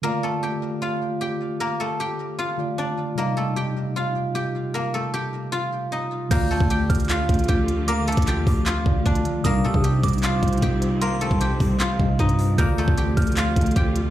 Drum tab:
CC |--------------------------------|--------------------------------|--------------------------------|--------------------------------|
HH |--------------------------------|--------------------------------|--------------------------------|--------------------------------|
CP |--------------------------------|--------------------------------|--------------------------------|--------------------------------|
BD |--------------------------------|--------------------------------|--------------------------------|--------------------------------|

CC |x-------------------------------|--------------------------------|--------------------------------|--------------------------------|
HH |x-------x---xxxxx---xxxxx---x---|x---xxxxx---o---x-------x-x-x---|x-------x---xxxxx---xxxxx---x---|x---x---x---o---x-------x-x-o---|
CP |----------------x---------------|--------x-------x---------------|----------------x---------------|----------------x---------------|
BD |o-----o-----o-------o---o-------|------o-----o-------o---o-------|o-----o-----o-------o---o-------|------o-----o-------o---o-------|

CC |--------------------------------|
HH |x-------x---xxxxx---xxxxx---x---|
CP |----------------x---------------|
BD |o-----o-----o-------o---o-------|